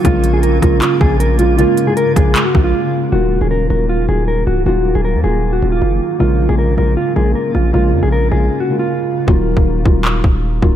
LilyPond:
<<
  \new Staff \with { instrumentName = "Clean electric guitar" } { \time 4/4 \key ees \dorian \tempo 4 = 156 f'8. aes'16 bes'8 bes'8 f'8 aes'8 bes'8 f'8 | f'8. aes'16 bes'8 aes'8. ges'8 f'4~ f'16 | ges'8. aes'16 bes'8 bes'8 f'8 aes'8 bes'8 ges'8 | ges'8. aes'16 bes'8 aes'8. ges'8 f'4~ f'16 |
f'8. aes'16 bes'8 bes'8 f'8 aes'8 bes'8 f'8 | f'8. aes'16 bes'8 aes'8. ges'8 f'4~ f'16 | r1 | }
  \new Staff \with { instrumentName = "Felt piano" } { \time 4/4 \key ees \dorian <des aes bes f'>4 r8 <des aes bes f'>4~ <des aes bes f'>16 r8. <des aes bes f'>16 r16 | <des aes bes f'>8 r16 <des aes bes f'>4~ <des aes bes f'>16 r2 | <ees ges bes f'>8 r16 <ees ges bes des'>8 r16 <ees ges bes ges'>8. r16 <ees ges bes f'>4 r8 | <ees ges bes f'>4 r8 <ees ges bes f'>8. r16 <ees ges bes f'>4 r8 |
<des aes bes f'>8 r16 <des aes bes f'>8 r16 <des aes bes f'>8. r16 <des aes bes f'>4 r8 | <des aes bes f'>4 r8 <des aes bes f'>8. r16 <des aes bes f'>4 r8 | <ees ges bes f'>4 r8 <ees ges bes f'>4~ <ees ges bes f'>16 r8. <ees ges bes f'>16 r16 | }
  \new Staff \with { instrumentName = "Ambient pad" } { \clef bass \time 4/4 \key ees \dorian << { <des aes f'>1~ | <des aes f'>1 | <ees ges f'>1~ | <ees ges f'>1 |
<des aes f'>1~ | <des aes f'>1 | r1 | } \\ { bes1~ | bes1 | bes1~ | bes1~ |
bes1~ | bes1 | r1 | } >> }
  \new Staff \with { instrumentName = "808-style bass" } { \clef bass \time 4/4 \key ees \dorian bes,,4. bes,,8 r8 bes,,4.~ | bes,,16 r4 r16 bes,,8 r8 bes,,8 r4 | ees,,8. ees,,8. ees,,4 ees,,4 des,,8 | ees,,8. ees,,8 ees,16 ees,,4 ees,,8 ges,,8 r8 |
bes,,8. bes,,8. bes,,8 r8 bes,,8 r8 bes,,8 | bes,,8 f,16 bes,,8. bes,,8 r2 | ees,,8. ees,,8. ees,,4 ees,,4 des,,8 | }
  \new DrumStaff \with { instrumentName = "Drums" } \drummode { \time 4/4 <hh bd>8 hh8 hh8 <hh bd>8 <hc hh>8 bd8 hh8 hh8 | hh8 hh8 hh8 <hh bd>8 <hc hh>8 bd8 r4 | r4 r4 r4 r4 | r4 r4 r4 r4 |
r4 r4 r4 r4 | r4 r4 r4 r4 | bd8. bd16 r8 bd8 hc8 bd8 r8 bd8 | }
>>